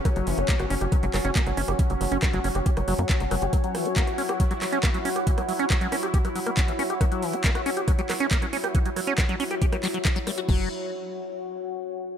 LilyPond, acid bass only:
\new Staff \with { instrumentName = "Acid bass" } { \clef bass \time 4/4 \tempo 4 = 138 fis16 fis16 e16 fis'16 ais16 fis'16 cis'16 g'16 fis16 fis16 fis16 cis'16 ais16 fis16 cis'16 g'16 | e16 fis16 fis16 cis'16 fis16 fis16 cis'16 g'16 g'16 fis16 fis16 ais16 fis16 fis16 fis16 g'16 | fis16 fis16 e16 fis'16 ais16 fis'16 cis'16 g'16 fis16 fis16 fis16 cis'16 ais16 fis16 cis'16 g'16 | e16 fis16 fis16 cis'16 fis16 fis16 cis'16 g'16 g'16 fis16 fis16 ais16 cis'16 e16 cis'16 g'16 |
fis16 fis16 e16 fis'16 ais16 fis'16 cis'16 g'16 fis16 fis16 fis16 cis'16 ais16 fis16 cis'16 g'16 | e16 fis16 fis16 cis'16 fis16 fis16 cis'16 g'16 g'16 fis16 fis16 fis16 fis16 fis16 g16 fis'16 | fis8 r2. r8 | }